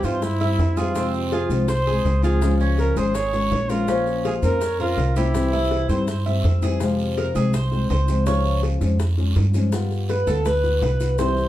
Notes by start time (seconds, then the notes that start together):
0.03 G2 E3 G3 C4 E4 F4 C5, short guiro, maracas
0.22 E4, muted nylon-string guitar stroke, high bongo, long guiro, maracas
0.40 G3 C4 E4 E5, high bongo, maracas
0.58 F2, high bongo, low bongo, short guiro, maracas
0.77 E3 G3 C4 E4 F4 G#4, high bongo, short guiro, maracas
0.95 C3 F3 G#3 C4 F4, high bongo, long guiro, maracas
1.14 high bongo, maracas
1.32 F4 G#4, high bongo, short guiro, maracas
1.50 C2 F3 G#3 C4 F4, short guiro, maracas
1.68 C5, muted nylon-string guitar stroke, high bongo, long guiro, maracas
1.87 G#3 C4 F4 G#4, high bongo, maracas
2.04 C#2, high bongo, low bongo, short guiro, maracas
2.23 F3 G#3 C4 F4 G#4, high bongo, short guiro, maracas
2.41 C#3 F3 G#3 C#4 F4, high bongo, long guiro, maracas
2.60 C#4, high bongo, maracas
2.78 A#4, high bongo, short guiro, maracas
2.96 G#1 F3 G#3 C#4 F4 G#4 C5, short guiro, maracas
3.15 C#5, muted nylon-string guitar stroke, high bongo, long guiro, maracas
3.33 G#3 C#4 F4 C#5, high bongo, maracas
3.51 A#1, high bongo, low bongo, short guiro, maracas
3.69 F3 G#3 C#4 F4 A#4, high bongo, short guiro, maracas
3.88 F3 A#3 C#4 F4 C5, high bongo, long guiro, maracas
4.06 high bongo, maracas
4.25 F4 G#4, high bongo, short guiro, maracas
4.42 F2 A#3 C#4 F4 A#4 C5, short guiro, maracas
4.61 C#5, muted nylon-string guitar stroke, high bongo, long guiro, maracas
4.79 C#4 F4 A#4 C5, high bongo, maracas
4.97 C2, high bongo, low bongo, short guiro, maracas
5.16 A#3 C#4 E4 F4 G4 C5, high bongo, short guiro, maracas
5.34 C3 E3 G3 C4 E4, high bongo, long guiro, maracas
5.53 E4, high bongo, maracas
5.71 high bongo, short guiro, maracas
5.89 G2 E3 G3 C4 E4 C5, short guiro, maracas
6.08 muted nylon-string guitar stroke, high bongo, long guiro, maracas
6.26 G3 C4 E4 E5, high bongo, maracas
6.44 F2, high bongo, low bongo, short guiro, maracas
6.62 E3 G3 C4 E4 G#4, high bongo, short guiro, maracas
6.80 C3 F3 G#3 C4 F4, high bongo, long guiro, maracas
6.99 high bongo, maracas
7.17 A#4, high bongo, short guiro, maracas
7.35 C2 F3 G#3 C4 F4 G#4, short guiro, maracas
7.53 C5, muted nylon-string guitar stroke, high bongo, long guiro, maracas
7.71 G#3 C4 F4, high bongo, maracas
7.90 C#2 C5, high bongo, low bongo, short guiro, maracas
8.08 F3 G#3 C4 F4, high bongo, short guiro, maracas
8.26 C#3 F3 G#3 C#4 F4 C#5, high bongo, long guiro, maracas
8.45 high bongo, maracas
8.63 high bongo, short guiro, maracas
8.81 F2 F3 G#3 C#4 F4, short guiro, maracas
8.99 muted nylon-string guitar stroke, high bongo, long guiro, maracas
9.18 G#3 C#4 F4, high bongo, maracas
9.36 G2, high bongo, low bongo, short guiro, maracas
9.54 F3 G#3 C#4 F4, high bongo, short guiro, maracas
9.72 G3 B3 F4, high bongo, long guiro, maracas
9.91 high bongo, maracas
10.09 B4, high bongo, short guiro, maracas
10.27 D2 B3 F4 A4, short guiro, maracas
10.45 B4, muted nylon-string guitar stroke, high bongo, long guiro, maracas
10.63 B3 F4, high bongo, maracas
10.82 C2 B4, high bongo, low bongo, short guiro, maracas
11.00 B3 F4, high bongo, short guiro, maracas
11.18 C3 E3 G3 C4 E4 C5, high bongo, long guiro, maracas
11.37 high bongo, maracas